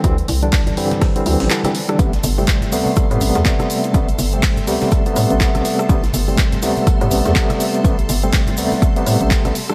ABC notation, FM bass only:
X:1
M:4/4
L:1/16
Q:"Swing 16ths" 1/4=123
K:Am
V:1 name="FM bass" clef=bass
D,, z C,,4 G,,3 A,,, D,, A,,, z4 | A,,, z G,,,4 D,, z2 A,, A,,, E,, z4 | A,,, z G,,,4 D,, z3 A,, A,,, z A,,, z2 | A,,, z G,,,4 D,, z2 A,, A,,, E,, z4 |
A,,, z G,,,4 D,, z3 A,, A,,, z A,,, z2 |]